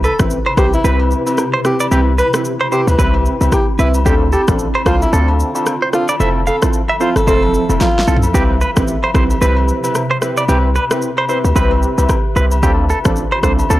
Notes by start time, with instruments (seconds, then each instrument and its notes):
Already playing: ambient pad C3 E4 B4
0.04 alto saxophone A4, clean electric guitar B4, high agogo, shaker
0.19 808-style bass A1, synth keys C4 E4 G4 B4, kick, cross-stick, shaker
0.30 shaker
0.46 clean electric guitar C5, high agogo
0.57 808-style bass B1, synth keys C4 E4 G4 B4, alto saxophone G4, clean electric guitar C5, kick, cross-stick, shaker
0.73 alto saxophone E4, high agogo, shaker
0.84 808-style bass C2, synth keys C4 E4 G4 B4, clean electric guitar B4, shaker
0.99 high agogo
1.11 shaker
1.26 synth keys C4 E4 G4 B4, high agogo, shaker
1.38 cross-stick, low woodblock, shaker
1.54 clean electric guitar C5
1.64 synth keys C4 E4 G4 B4, alto saxophone G4, cross-stick, shaker
1.80 clean electric guitar D5, high agogo, shaker
1.91 808-style bass C2, synth keys C4 E4 G4 B4, ambient pad C4, clean electric guitar G4, high agogo, shaker
2.18 clean electric guitar B4, alto saxophone B4, high agogo, shaker
2.33 synth keys C4 E4 G4 B4, cross-stick, shaker
2.45 shaker
2.60 clean electric guitar C5, high agogo
2.71 synth keys C4 E4 G4 B4, alto saxophone G4, clean electric guitar C5, shaker
2.87 808-style bass D2, alto saxophone B4, high agogo, shaker
2.98 808-style bass C2, synth keys C4 E4 G4 B4, clean electric guitar B4, kick, shaker
3.14 high agogo
3.26 shaker
3.41 808-style bass C2, synth keys C4 E4 G4 B4, high agogo, shaker
3.52 alto saxophone G4, kick, cross-stick, low woodblock, shaker
3.79 808-style bass C2, synth keys C4 E4 G4 B4, alto saxophone E4, clean electric guitar B4, shaker
3.94 high agogo, shaker
4.05 808-style bass D2, ambient pad D3 F4, synth keys C4 D4 F4 A4, clean electric guitar G4, kick, high agogo, shaker
4.33 alto saxophone G4, clean electric guitar A4, high agogo, shaker
4.48 808-style bass A1, synth keys C4 D4 F4 A4, kick, cross-stick, shaker
4.59 shaker
4.74 clean electric guitar C5, high agogo
4.86 808-style bass C2, synth keys C4 D4 F4 A4, alto saxophone F4, clean electric guitar C5, kick, cross-stick, shaker
5.02 alto saxophone E4, high agogo, shaker
5.12 808-style bass D2, synth keys C4 D4 F4 A4, clean electric guitar A4, shaker
5.28 high agogo
5.40 shaker
5.55 synth keys C4 D4 F4 A4, high agogo, shaker
5.66 cross-stick, low woodblock, shaker
5.82 clean electric guitar C5
5.93 synth keys C4 D4 F4 A4, alto saxophone F4, cross-stick, shaker
6.08 clean electric guitar D5, high agogo, shaker
6.20 808-style bass F1, ambient pad F3 A4 E5, synth keys C4 E4 F4 A4, clean electric guitar E5, high agogo, shaker
6.47 alto saxophone A4, clean electric guitar F5, high agogo, shaker
6.62 synth keys C4 E4 F4 A4, kick, cross-stick, shaker
6.73 shaker
6.89 clean electric guitar E5, high agogo
7.00 synth keys C4 E4 F4 A4, alto saxophone F4, clean electric guitar C5, shaker
7.16 808-style bass G1, alto saxophone A4, cross-stick, high agogo, shaker
7.27 808-style bass F1, synth keys C4 E4 F4 A4, alto saxophone A4, clean electric guitar C5, kick, shaker
7.42 high agogo
7.54 shaker
7.69 808-style bass F1, synth keys C4 E4 F4 A4, high agogo, shaker
7.81 alto saxophone F4, kick, snare, low woodblock, shaker
7.99 snare
8.07 808-style bass B1, synth keys C4 E4 F4 A4, clean electric guitar A4, shaker
8.17 floor tom
8.23 high agogo, shaker
8.34 808-style bass C2, ambient pad C3 B4, synth keys C4 E4 G4 B4, clean electric guitar G4, kick, high agogo, shaker
8.61 clean electric guitar B4, high agogo, shaker
8.76 808-style bass A1, synth keys C4 E4 G4 B4, kick, cross-stick, shaker
8.88 shaker
9.03 clean electric guitar C5, high agogo
9.14 808-style bass B1, synth keys C4 E4 G4 B4, clean electric guitar C5, kick, cross-stick, shaker
9.30 high agogo, shaker
9.41 808-style bass C2, synth keys C4 E4 G4 B4, clean electric guitar B4, shaker
9.57 high agogo
9.68 shaker
9.84 synth keys C4 E4 G4 B4, high agogo, shaker
9.95 cross-stick, low woodblock, shaker
10.11 clean electric guitar C5
10.21 synth keys C4 E4 G4 B4, cross-stick, shaker
10.37 clean electric guitar D5, high agogo, shaker
10.48 808-style bass C2, synth keys C4 E4 G4 B4, clean electric guitar G4, high agogo, shaker
10.75 clean electric guitar B4, high agogo, shaker
10.91 synth keys C4 E4 G4 B4, cross-stick, shaker
11.02 shaker
11.17 clean electric guitar C5, high agogo
11.29 synth keys C4 E4 G4 B4, clean electric guitar C5, shaker
11.45 808-style bass D2, high agogo, shaker
11.55 808-style bass C2, synth keys C4 E4 G4 B4, clean electric guitar B4, kick, shaker
11.71 high agogo
11.83 shaker
11.98 808-style bass C2, synth keys C4 E4 G4 B4, high agogo, shaker
12.09 kick, cross-stick, low woodblock, shaker
12.36 808-style bass C2, synth keys C4 E4 G4 B4, clean electric guitar B4, shaker
12.51 high agogo, shaker
12.63 808-style bass D2, ambient pad D3 C4 F4, synth keys C4 D4 F4 A4, clean electric guitar G4, kick, high agogo, shaker
12.89 clean electric guitar A4, high agogo, shaker
13.05 808-style bass A1, synth keys C4 D4 F4 A4, kick, cross-stick, shaker
13.16 shaker
13.31 clean electric guitar C5, high agogo
13.43 808-style bass C2, synth keys C4 D4 F4 A4, clean electric guitar C5, kick, cross-stick, shaker
13.59 high agogo, shaker
13.70 808-style bass D2, synth keys C4 D4 F4 A4, clean electric guitar A4, shaker